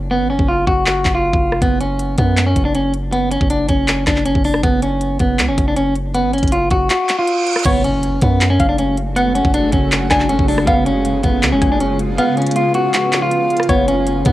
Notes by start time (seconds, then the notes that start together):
Already playing: F#1
0.11 B3
0.20 G#1
0.30 F#1 C#4
0.39 F#1, kick
0.48 F4
0.67 F#1 F#4, kick
0.86 F#4, clap
1.05 F#1, kick, clap
1.15 F4
1.33 F#1, kick
1.52 F1, cross-stick
1.62 F#1 B3, kick, closed hi-hat
1.81 C#4, closed hi-hat
1.99 closed hi-hat
2.18 F#2 B3, kick, closed hi-hat
2.37 clap, closed hi-hat
2.46 C#4
2.56 F#1, kick, closed hi-hat
2.65 D4
2.75 C#4, closed hi-hat
2.94 closed hi-hat
3.12 B3, closed hi-hat
3.31 C#4, closed hi-hat
3.41 F#1, kick
3.50 D4, closed hi-hat
3.69 F#1 C#4, kick, closed hi-hat
3.88 clap, closed hi-hat
4.07 F#1 D4, kick, cross-stick, clap, closed hi-hat
4.16 clap
4.26 C#4, closed hi-hat
4.35 F#1, kick
4.44 D4, open hi-hat
4.54 cross-stick
4.64 F#1 B3, kick, closed hi-hat
4.82 C#4, closed hi-hat
5.01 closed hi-hat
5.19 F#1 B3, kick, closed hi-hat
5.39 C#2, clap, closed hi-hat
5.48 F#1 C#4
5.58 F#1, kick, closed hi-hat
5.68 D4
5.76 C#4, closed hi-hat
5.96 closed hi-hat
6.14 B3, closed hi-hat
6.24 G#1
6.33 F#1 C#4, closed hi-hat
6.38 closed hi-hat
6.43 F#1, kick, closed hi-hat
6.48 closed hi-hat
6.52 F4, closed hi-hat
6.70 F#1 F#4, kick, closed hi-hat
6.90 F#4, clap, closed hi-hat, reverse cymbal
7.09 clap, closed hi-hat
7.18 F4
7.27 closed hi-hat
7.46 closed hi-hat, open hi-hat
7.53 cross-stick, closed hi-hat
7.59 closed hi-hat
7.65 F#1 C#3 G#3 A3 B3 F#4 C#5, kick, closed hi-hat, crash, impact
7.84 C#4, closed hi-hat
8.03 closed hi-hat
8.21 F#2 B3, kick, closed hi-hat
8.41 clap, closed hi-hat
8.50 C#4
8.60 F#1 F5, kick, closed hi-hat
8.69 D4
8.78 C#4, closed hi-hat
8.97 closed hi-hat
9.16 B3 F#5, closed hi-hat
9.35 C#4, closed hi-hat
9.45 F#1, kick
9.54 D4, closed hi-hat
9.72 F#1 C#4, kick, closed hi-hat
9.92 clap, closed hi-hat
10.11 F#1 D4 G#5, kick, cross-stick, clap, closed hi-hat
10.20 clap
10.29 C#4, closed hi-hat
10.39 F#1, kick
10.48 D4, open hi-hat
10.58 cross-stick
10.67 F#1 B3 F4 F5, kick, closed hi-hat
10.86 C#4, closed hi-hat
11.05 closed hi-hat
11.23 F#1 B3, kick, closed hi-hat
11.43 C#2, clap, closed hi-hat
11.52 F#1 C#4
11.62 F#1 G#5, kick, closed hi-hat
11.72 D4
11.80 C#4, closed hi-hat
11.99 closed hi-hat
12.18 B3 F5, closed hi-hat
12.37 C#4, closed hi-hat
12.42 closed hi-hat
12.47 closed hi-hat
12.51 closed hi-hat
12.56 F4, closed hi-hat
12.74 F#4, closed hi-hat
12.94 F#4, clap, closed hi-hat
13.13 clap, closed hi-hat
13.22 F4
13.31 closed hi-hat
13.50 closed hi-hat, open hi-hat
13.57 cross-stick, closed hi-hat
13.63 closed hi-hat
13.69 F#1 G#3 A3 B3 F#4 C#5, kick, closed hi-hat
13.88 C#4, closed hi-hat
14.07 closed hi-hat
14.25 F#2 B3, kick, closed hi-hat